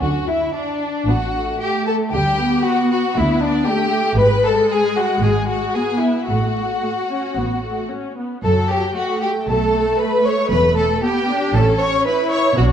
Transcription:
0.00 D2 D3 F#4 F#5
0.27 E4 E5
0.53 D4 D5
1.07 A1 A2 B3 F#4 F#5
1.34 A3
1.59 G4 G5
1.86 A4 A5
2.11 D2 D3 G3 G4 G5
2.38 B3
2.64 F#4 F#5
2.91 F#4 F#5
3.15 D2 D3 B3 E4 E5
3.41 D4 D5
3.66 A3 G4 G5
4.17 G#1 G#2 G#3 B4 B5
4.45 A4 A5
4.71 G#4 G#5
4.97 F#4 F#5
5.22 G#1 G#2 G#4 G#5
5.48 F#4 F#5
5.75 B3 G#4 G#5
6.00 E4 E5
6.27 A1 A2 A3 F#4 F#5
6.83 A3
7.10 C#4
7.36 A1 A2 B3
7.64 A3
7.91 C#4
8.17 B3
8.44 F#1 F#2 F#3 A4 A5
8.70 G4 G5
8.95 A3 F#4 F#5
9.22 G4 G5
9.47 B1 B2 A4 A5
9.99 B4 B5
10.25 C#5 C#6
10.50 E1 E2 B4 B5
10.76 A4 A5
11.03 B3 G4 G5
11.29 D4
11.54 A1 A2 C#4 A4 A5
11.79 C#5 C#6
12.06 E4 B4 B5
12.30 C#5 C#6
12.57 B1 B2 D4 F#4 F#5

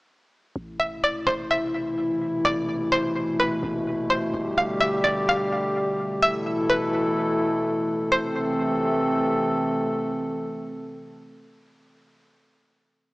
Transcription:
0.56 A1 B2 C3 E3 A3 E4
0.80 E5
1.04 D5
1.27 A1 C5
1.51 E5
2.09 G1
2.45 A1 D5
2.92 C5
3.40 B4
3.63 A1
4.10 C5
4.34 G1 D3 G3 G4
4.58 F5
4.81 E5
5.04 G1 D5
5.29 F5
6.22 B2 E3 A3 E4 A4 E5
6.70 B4
8.12 C3 E3 A3 C4 A4 C5

